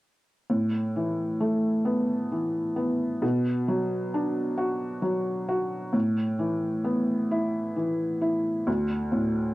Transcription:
0.50 A2
0.96 E3
1.40 A3
1.85 B3
2.32 E3
2.76 B3
3.22 B2
3.68 F#3
4.14 D4
4.58 F#4
5.02 F#3
5.49 F#4
5.93 A2
6.39 E3
6.84 B3
7.31 E4
7.76 E3
8.21 E4
8.67 D2
9.12 A2

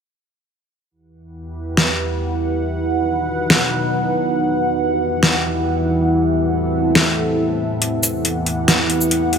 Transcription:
0.91 E2 E3 E4 G4 B4 F#5
1.40 G4
1.57 F#5
1.77 snare
2.64 B2 F#3 D#4 B4
3.06 B4
3.50 snare
4.36 E2 E3 B3 E4 G4
5.02 G4
5.23 snare
6.09 A2 C4 A4 E5
6.67 A4
6.87 E5
6.95 snare
7.82 E2 E3 B3 E4 G4 F#5, closed hi-hat
8.03 closed hi-hat, shaker
8.22 G4, closed hi-hat
8.42 F#5
8.46 closed hi-hat
8.68 snare, closed hi-hat
8.90 closed hi-hat
9.01 shaker
9.11 closed hi-hat
9.33 closed hi-hat

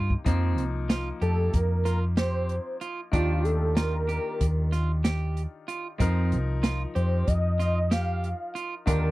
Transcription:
Already playing: G2 C3 A#3 D#4 F4
0.10 kick
0.25 F2 F3 A#3 C4 D#4, kick, closed hi-hat
0.58 C2, closed hi-hat
0.89 F4, snare, closed hi-hat
1.22 F2 G4 A4, closed hi-hat
1.53 F2 A#4, kick, closed hi-hat
1.85 F4 A#4, snare, closed hi-hat
2.17 G4 C5, snare, closed hi-hat
2.49 closed hi-hat
2.81 F4, closed hi-hat
3.12 D#2 D#3 D4 F4 G4, kick, closed hi-hat
3.44 A4, closed hi-hat
3.75 F4 A#4, snare, closed hi-hat
4.09 G4, closed hi-hat
4.40 D#2, kick, closed hi-hat
4.72 F4, snare, closed hi-hat
5.04 G4, snare, closed hi-hat
5.37 closed hi-hat
5.68 F4, closed hi-hat
5.98 F2 F3 C4 D#4 A#4, kick, closed hi-hat
6.32 C2, closed hi-hat
6.63 F4, snare, closed hi-hat
6.95 F2 G4 C5, closed hi-hat
7.27 F2 D#5, kick, closed hi-hat
7.59 F4 D#5, snare, closed hi-hat
7.91 G4 F5, snare, closed hi-hat
8.24 closed hi-hat
8.55 F4, closed hi-hat
8.86 D#2 D3 D#3 D4 F4 G4 A#4, kick, closed hi-hat

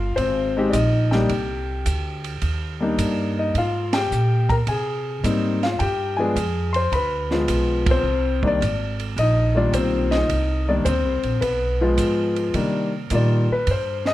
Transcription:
Already playing: G1 F4 F5
0.16 G#1 C4 C5, kick, ride
0.57 G#3 C4 D#4 G4
0.69 A#1 D5 D#5
0.73 D#4, kick, hi-hat pedal, ride
1.11 G3 A#3 D4 D#4 G4 G5, snare
1.29 C2, kick, ride
1.86 D2, kick, hi-hat pedal, ride
2.24 ride
2.42 D#2, kick, ride
2.80 G3 A#3 D4 D#4
2.98 G2, kick, hi-hat pedal, ride
3.39 D#4 D#5
3.55 G#2 F4 F5, kick, ride
3.93 G4 G5, snare, ride
4.11 A#2, hi-hat pedal
4.49 A#4 A#5, kick, ride
4.67 C3 G#4 G#5, kick, ride
5.23 G#2 G3 A#3 C4 D#4, kick, hi-hat pedal, ride
5.63 F4 F5, snare, ride
5.79 G2 G4 G5, kick, ride
6.17 F3 G#3 B3 D4 G#4 G#5
6.36 F2, kick, hi-hat pedal, ride
6.73 C5 C6, ride
6.92 D2 B4 B5, kick, ride
7.31 F3 G#3 B3 F4, snare
7.48 B1, kick, hi-hat pedal, ride
7.86 C4, kick, ride
7.91 C5
8.03 C2
8.43 D#3 G3 A#3 D4, kick
8.47 D5
8.61 G#1, kick, hi-hat pedal, ride
9.00 ride
9.16 A#1 D#5, kick, ride
9.21 D#4
9.55 D#3 G3 A#3 D4 F4 D5
9.72 B1 C4 C5, kick, hi-hat pedal, ride
10.11 D#4 D#5, snare, ride
10.29 C2, kick, ride
10.69 D#3 G3 A#3 D4 D5
10.85 D2 C4 C5, kick, hi-hat pedal, ride
11.05 C2
11.23 A#1, ride
11.41 B1 B3 B4, kick, ride
11.81 F3 G#3 B3 F4
11.98 G#2, kick, hi-hat pedal, ride
12.36 ride
12.54 C3 D#3 G3 A#3 D4, kick, ride
13.10 A#2 D#3 G3 A#3 F4, kick, hi-hat pedal, ride
13.15 D5
13.51 B4, muted upright bass stroke
13.67 G2, kick, ride
13.71 C5
14.05 D#5, snare

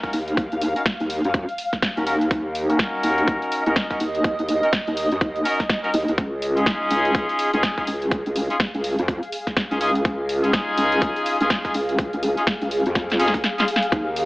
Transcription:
Already playing: F5
0.03 C#4 D#4 F#4 A#4, kick, closed hi-hat
0.13 D#2, open hi-hat
0.28 closed hi-hat
0.37 kick, closed hi-hat
0.52 D#2, closed hi-hat
0.61 open hi-hat
0.76 C#4 D#4 F#4 A#4, closed hi-hat
0.86 kick, snare, closed hi-hat
1.00 D#2, closed hi-hat
1.10 open hi-hat
1.24 F#2, closed hi-hat
1.34 F#2, kick, closed hi-hat
1.49 closed hi-hat
1.58 open hi-hat
1.73 kick, snare, closed hi-hat
1.82 kick, snare, closed hi-hat
1.97 D#2 C#4 D#4 F#4 A#4, closed hi-hat
2.07 C#4 D#4 F#4 A#4, open hi-hat
2.21 closed hi-hat
2.31 D#2, kick, closed hi-hat
2.55 open hi-hat
2.70 C#4 D#4 F#4 A#4, closed hi-hat
2.79 kick, snare, closed hi-hat
2.86 D#5
3.03 D#2, open hi-hat
3.18 closed hi-hat
3.28 kick, closed hi-hat
3.42 closed hi-hat
3.52 open hi-hat
3.66 D#2 C#4 D#4 F#4 A#4, closed hi-hat
3.76 kick, snare, closed hi-hat
3.91 C#4 D#4 F#4 A#4, kick, closed hi-hat
4.00 D#2, open hi-hat
4.15 closed hi-hat
4.24 kick, closed hi-hat
4.39 D#2, closed hi-hat
4.49 open hi-hat
4.63 C#4 D#4 F#4 A#4, closed hi-hat
4.73 kick, snare, closed hi-hat
4.87 D#2, closed hi-hat
4.97 open hi-hat
5.12 F#2, closed hi-hat
5.21 D#2, kick, closed hi-hat
5.36 closed hi-hat
5.45 C#4 D#4 F#4 A#4, open hi-hat
5.60 kick, snare, closed hi-hat
5.70 kick, snare, closed hi-hat
5.84 C#4 D#4 F#4 A#4, closed hi-hat
5.94 D#2, open hi-hat
6.08 D#2, closed hi-hat
6.18 C#2 G#4, kick, closed hi-hat
6.42 open hi-hat
6.57 C#4 D#4 F4 G#4, closed hi-hat
6.66 kick, snare, closed hi-hat
6.91 C#2, open hi-hat
7.05 closed hi-hat
7.15 kick, closed hi-hat
7.29 closed hi-hat
7.39 open hi-hat
7.53 C#2 C#4 D#4 F4 G#4, closed hi-hat
7.58 F5
7.63 kick, snare, closed hi-hat
7.78 C#4 D#4 F4 G#4, kick, closed hi-hat
7.87 C#2, open hi-hat
8.02 closed hi-hat
8.11 kick, closed hi-hat
8.26 C#2, closed hi-hat
8.36 open hi-hat
8.50 C#4 D#4 F4 G#4, closed hi-hat
8.60 kick, snare, closed hi-hat
8.74 C#2, closed hi-hat
8.84 open hi-hat
8.99 F2, closed hi-hat
9.08 F2, kick, closed hi-hat
9.23 closed hi-hat
9.32 open hi-hat
9.47 kick, snare, closed hi-hat
9.57 kick, snare, closed hi-hat
9.71 C#2 C#4 D#4 F4 G#4, closed hi-hat
9.81 C#4 D#4 F4 G#4, open hi-hat
9.95 closed hi-hat
10.05 C#2, kick, closed hi-hat
10.29 open hi-hat
10.44 C#4 D#4 F4 G#4, closed hi-hat
10.53 kick, snare, closed hi-hat
10.78 C#2, open hi-hat
10.92 closed hi-hat
11.02 kick, closed hi-hat
11.16 closed hi-hat
11.26 open hi-hat
11.40 C#2 C#4 D#4 F4 G#4, closed hi-hat
11.50 kick, snare, closed hi-hat
11.65 C#4 D#4 F4 G#4, kick, closed hi-hat
11.74 C#2, open hi-hat
11.89 closed hi-hat
11.99 kick, closed hi-hat
12.13 C#2, closed hi-hat
12.23 open hi-hat
12.37 C#4 D#4 F4 G#4, closed hi-hat
12.47 kick, snare, closed hi-hat
12.62 C#2, closed hi-hat
12.71 open hi-hat
12.86 F2, closed hi-hat
12.95 F2, kick, snare, closed hi-hat
13.10 snare, closed hi-hat
13.20 C#4 D#4 F4 G#4, open hi-hat
13.28 snare
13.34 C#2, kick, closed hi-hat
13.44 snare, closed hi-hat
13.58 C#4 D#4 F4 G#4, snare, closed hi-hat
13.68 open hi-hat
13.76 snare
13.83 closed hi-hat
13.92 D#2 D#3 C#4 F#4, kick, closed hi-hat
14.16 open hi-hat

